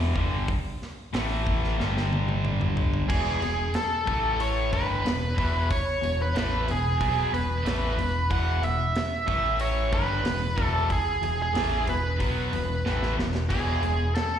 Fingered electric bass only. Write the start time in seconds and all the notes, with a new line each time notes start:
Already playing: E1
0.15 G1
1.13 A1
1.79 G1
3.09 E1
3.42 E1
4.07 A1
4.72 G1
5.05 E1
5.37 E1
6.03 E1
6.35 A1
6.68 E1
7.01 B1
7.32 E1
7.64 A1
7.97 E1
8.31 E1
8.62 E1
9.28 A1
9.92 G1
10.25 E1
10.57 E1
11.21 E1
11.55 A1
11.86 E1
12.20 B1
12.51 E1
12.84 A1
13.16 E1
13.50 E1
13.83 E1